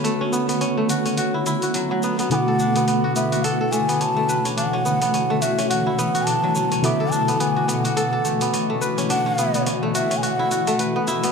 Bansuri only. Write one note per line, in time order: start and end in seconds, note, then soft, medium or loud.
2.32 3.12 F#5 loud
2.32 2.36 G#5 medium
3.16 3.45 E5 medium
3.43 3.73 F#5 medium
3.72 4.03 G#5 medium
4.01 4.46 A5 loud
4.57 5.43 F#5 medium
5.42 5.70 E5 medium
5.70 6.28 F#5 medium
6.26 6.71 A5 loud
6.84 7.13 E5 medium
7.12 7.42 A5 medium
7.41 7.71 G#5 medium
7.69 8.54 F#5 medium
9.10 9.63 F#5 loud
9.95 10.18 E5 medium
10.17 10.24 G#5 medium
10.23 10.80 F#5 loud